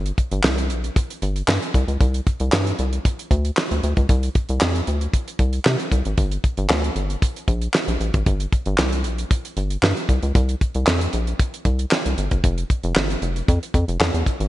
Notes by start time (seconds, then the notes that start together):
Already playing: G1
0.06 closed hi-hat
0.18 kick, closed hi-hat
0.31 G1, closed hi-hat
0.44 C2, snare, clap
0.58 closed hi-hat
0.70 A#1, closed hi-hat
0.84 closed hi-hat
0.96 kick, closed hi-hat
1.10 closed hi-hat
1.22 G1, closed hi-hat
1.36 closed hi-hat
1.48 G2, snare, clap
1.62 closed hi-hat
1.74 C2, kick, closed hi-hat
1.88 C#2, closed hi-hat
2.00 C2, kick, closed hi-hat
2.14 closed hi-hat
2.27 kick, closed hi-hat
2.40 C2, closed hi-hat
2.52 G2, snare, clap
2.67 closed hi-hat
2.79 C2, closed hi-hat
2.93 closed hi-hat
3.05 kick, closed hi-hat
3.19 closed hi-hat
3.31 D2, kick, closed hi-hat
3.45 closed hi-hat
3.57 snare, clap
3.71 D2, closed hi-hat
3.83 D2, closed hi-hat
3.97 C#2, kick, closed hi-hat
4.09 C2, kick, closed hi-hat
4.23 closed hi-hat
4.35 kick, closed hi-hat
4.49 C2, closed hi-hat
4.61 F2, snare, clap
4.75 closed hi-hat
4.87 D2, closed hi-hat
5.01 closed hi-hat
5.14 kick, closed hi-hat
5.28 closed hi-hat
5.39 C2, kick, closed hi-hat
5.53 closed hi-hat
5.65 C3, snare, clap
5.80 closed hi-hat
5.92 C2, kick, closed hi-hat
6.05 G#1, closed hi-hat
6.18 G1, kick, closed hi-hat
6.31 closed hi-hat
6.44 kick, closed hi-hat
6.57 G1, closed hi-hat
6.70 D2, snare, clap
6.84 closed hi-hat
6.96 G1, closed hi-hat
7.10 closed hi-hat
7.22 kick, closed hi-hat
7.36 closed hi-hat
7.48 A#1, kick, closed hi-hat
7.61 closed hi-hat
7.74 snare, clap
7.88 A#1, closed hi-hat
8.00 A1, closed hi-hat
8.14 G#1, kick, closed hi-hat
8.26 G1, kick, closed hi-hat
8.40 closed hi-hat
8.53 kick, closed hi-hat
8.66 G1, closed hi-hat
8.78 C2, snare, clap
8.92 closed hi-hat
9.04 A#1, closed hi-hat
9.18 closed hi-hat
9.31 kick, closed hi-hat
9.45 closed hi-hat
9.57 G1, closed hi-hat
9.70 closed hi-hat
9.83 G2, snare, clap
9.97 closed hi-hat
10.09 C2, kick, closed hi-hat
10.23 C#2, closed hi-hat
10.35 C2, kick, closed hi-hat
10.49 closed hi-hat
10.61 kick, closed hi-hat
10.74 C2, closed hi-hat
10.87 F2, snare, clap
11.01 closed hi-hat
11.13 A#1, closed hi-hat
11.27 closed hi-hat
11.40 kick, closed hi-hat
11.54 closed hi-hat
11.65 C2, kick, closed hi-hat
11.79 closed hi-hat
11.91 snare, clap
12.06 C2, closed hi-hat
12.18 G1, closed hi-hat
12.31 F#1, kick, closed hi-hat
12.44 F1, kick, closed hi-hat
12.58 closed hi-hat
12.70 kick, closed hi-hat
12.83 F1, closed hi-hat
12.96 G1, snare, clap
13.10 closed hi-hat
13.22 F1, closed hi-hat
13.36 closed hi-hat
13.48 F2, kick, closed hi-hat
13.63 closed hi-hat
13.74 F2, kick, closed hi-hat
13.88 F1, closed hi-hat
14.00 F2, snare, clap
14.14 E2, closed hi-hat
14.26 kick, closed hi-hat
14.40 G#1, closed hi-hat